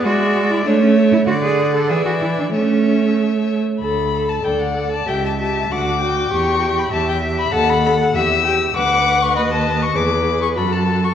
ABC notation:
X:1
M:2/4
L:1/16
Q:1/4=97
K:A
V:1 name="Violin"
e4 e4 | f4 e4 | e6 z2 | [K:D] b3 a g f2 a |
g a a2 d'4 | c'3 b a g2 b | a b b2 e'4 | [K:Bdor] d'3 c' b a2 c' |
d'3 c' b a2 c' |]
V:2 name="Violin"
d4 c4 | d4 d4 | c6 z2 | [K:D] z4 d4 |
e4 f2 g2- | g4 e4 | f4 e2 g2 | [K:Bdor] f4 ^d4 |
B4 A4 |]
V:3 name="Viola"
G,4 A,4 | D,4 E,4 | A,6 z2 | [K:D] A2 A2 A2 A2 |
G2 G2 F2 F2 | G2 G2 G2 G2 | A2 A2 G2 G2 | [K:Bdor] B8 |
G4 F4 |]
V:4 name="Cello"
F3 E D C2 E | F G2 A G F E D | C4 z4 | [K:D] D,,4 D,,4 |
C,,4 D,,4 | E,,4 E,,4 | ^D,,4 E,,4 | [K:Bdor] D,,4 ^D,,4 |
E,,4 F,,4 |]